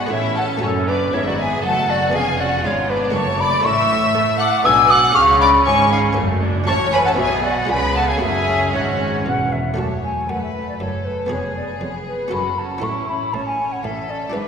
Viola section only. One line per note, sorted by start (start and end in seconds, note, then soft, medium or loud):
0.00 0.10 B3 medium
0.11 0.60 C#4 medium
0.61 1.12 C#4 medium
1.12 1.62 B3 medium
1.63 2.14 A3 medium
2.14 2.64 C#4 medium
2.64 3.14 B3 medium
3.14 4.65 A3 medium
4.66 5.16 D4 medium
5.17 6.15 C#4 medium
6.17 6.42 A3 medium
6.42 6.68 D4 medium
6.68 7.18 C#4 medium
7.18 7.68 B3 medium
7.69 8.21 B3 medium
8.22 9.58 C#4 medium
9.78 10.02 A3 soft
10.03 10.28 A3 soft
10.29 10.54 A3 soft
10.55 10.79 A3 soft
10.80 11.05 A3 soft
11.06 11.31 A3 soft
11.30 11.55 B3 soft
11.56 11.80 B3 soft
11.81 12.06 B3 soft
12.07 12.32 B3 soft
12.32 12.57 C#4 soft
12.58 12.82 C#4 soft
12.84 13.08 C#4 soft
13.09 13.33 C#4 soft
13.34 13.58 C#4 soft
13.59 13.83 C#4 soft
13.84 14.09 C#4 soft
14.10 14.34 C#4 soft
14.35 14.48 D4 soft